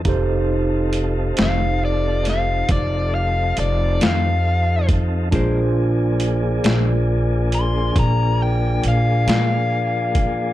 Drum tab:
HH |x-xx-xx-xx-x|x-xx-xx-xx-x|
SD |---o-o---o--|---o-----o--|
BD |o-----o----o|o-----o----o|